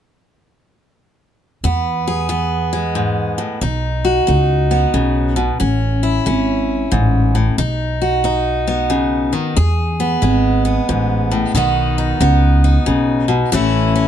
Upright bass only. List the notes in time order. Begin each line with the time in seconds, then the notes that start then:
1.64 E2
3.62 B1
4.28 C#2
4.94 B1
5.61 A1
6.27 G#1
6.92 A1
7.58 B1
9.57 E2
10.22 G#1
10.89 A1
11.54 B1
12.20 C#2
12.87 B1
13.53 A1